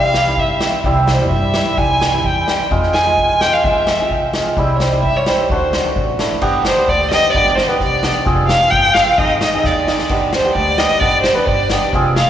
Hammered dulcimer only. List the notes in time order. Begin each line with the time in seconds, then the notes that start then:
Already playing: G3
0.27 G3 C4 E4
0.62 G3 C4 E4
0.86 G3 C4 E4
1.21 G3 C4 E4
1.55 G3 C4 E4
1.78 G3 C4 E4
2.13 G3 C4 E4
2.47 G3 C4 E4
2.71 G#3 C4 F4
3.06 G#3 C4 F4
3.40 G#3 C4 F4
3.66 G#3 C4 F4
4.01 G#3 C4 F4
4.36 G#3 C4 F4
4.58 G3 C4 E4
4.92 G3 C4 E4
5.27 G3 C4 E4
5.51 A3 D4 F#4
5.85 A3 D4 F#4
6.19 A3 D4 E4
6.41 B3 D4 G4
6.78 B3 D4 G4
7.13 B3 D4 G4
7.35 B3 D4 G4
7.68 B3 D4 G4
8.03 B3 D4 G4
8.25 C4 F4 G#4
8.62 C4 F4 G#4
8.96 C4 F4 G#4
9.19 C4 D#4 G#4
9.54 C4 D#4 G#4
9.87 C4 D#4 G#4
10.10 B3 D4 G4
10.45 B3 D4 G4
10.78 B3 D4 G4
11.01 B3 D4 G4
11.36 B3 D4 G4
11.71 B3 D4 G4
11.94 C4 F4 G#4